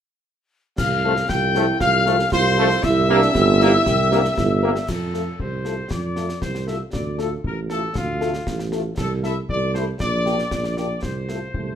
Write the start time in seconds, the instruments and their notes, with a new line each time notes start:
0.78 tuba C2, trumpet section F5, piccolo F6, concert bass drum, snare, crash
1.04 trombone section F3 A3, french horn section C4 F4 A4
1.17 snare
1.29 tuba C2, euphonium F4, trumpet section G5, piccolo G6, concert bass drum, snare
1.55 trombone section F3 A3, french horn section C4 F4 A4, euphonium E4, snare
1.80 tuba C2, euphonium F4, trumpet section F5, piccolo F6, concert bass drum, snare
2.06 trombone section F3 A3, french horn section C4 F4 A4, euphonium G4, snare
2.19 snare
2.32 tuba C2, euphonium F4, trumpet section C5, piccolo C6, concert bass drum, snare
2.58 trombone section F3 A3, french horn section C4 F4 A4
2.71 snare
2.83 tuba C2, euphonium E4, trumpet section E5, piccolo E6, concert bass drum, snare, crash
3.09 trombone section G3 A#3, french horn section C4 G4 A#4, euphonium D4
3.22 snare
3.34 tuba G1, euphonium C4, concert bass drum, snare
3.60 trombone section G3 A#3, french horn section C4 G4 A#4, euphonium E4, snare
3.86 tuba C2, euphonium G4, concert bass drum, snare
4.11 trombone section G3 A#3, french horn section C4 G4 A#4, euphonium D4, snare
4.25 snare
4.37 tuba G1, euphonium E4, concert bass drum, snare
4.63 trombone section G3 A#3, french horn section C4 G4 A#4
4.76 snare
4.88 tuba F2, trumpet section A4, concert bass drum, snare, crash
5.14 french horn section A3 F4 A4, snare
5.39 tuba C2, trumpet section C5, concert bass drum
5.65 french horn section A3 F4 A4, snare
5.90 tuba F2, trumpet section D5, concert bass drum, snare
6.16 french horn section A3 F4 A4, snare
6.29 snare
6.41 tuba C2, trumpet section C5, concert bass drum, snare
6.55 snare
6.67 french horn section A3 F4 A4, trumpet section E5, snare
6.93 tuba D2, trumpet section D5, concert bass drum, snare
7.19 french horn section A3 F4 A4, trumpet section A4, snare
7.44 tuba A1, trumpet section A#4, concert bass drum
7.69 french horn section A3 F4 A4, trumpet section A4, snare
7.95 tuba D2, trumpet section F4, concert bass drum, snare
8.21 french horn section A3 F4 A4, snare
8.34 snare
8.47 tuba A1, concert bass drum, snare
8.59 snare
8.72 french horn section A3 F4 A4, snare
8.97 tuba C2, trumpet section A4, concert bass drum, snare, crash
9.23 french horn section A3 E4 A4, trumpet section E5, snare
9.49 tuba C2, trumpet section D5, concert bass drum
9.74 french horn section A3 E4 A4, trumpet section C5, snare
10.00 tuba A#1, trumpet section D5, concert bass drum, snare
10.26 french horn section A#3 D4 G4, snare
10.39 snare
10.51 tuba A#1, concert bass drum, snare
10.64 snare
10.77 french horn section A#3 D4 G4, trumpet section D5, snare
11.03 tuba C2, trumpet section C5, concert bass drum, snare
11.29 french horn section A3 F4 A4, snare
11.53 tuba C2, euphonium A3, concert bass drum